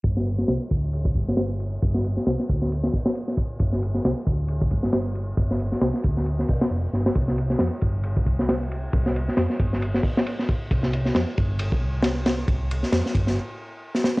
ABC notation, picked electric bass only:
X:1
M:4/4
L:1/8
Q:"Swing 16ths" 1/4=135
K:Cdor
V:1 name="Picked electric bass" clef=bass
G,,,2 C,, D,,2 G,,,3 | G,,,2 C,, D,,2 z3 | G,,,2 C,, D,,2 G,,,3 | G,,,2 C,, D,,2 C,, F,,, G,,, |
C,,2 F,, G,,,2 C,,3 | C,,2 F,, G,,,2 z3 | C,,2 F,, G,,,2 C,,3 | C,,2 F,, G,,, z4 |]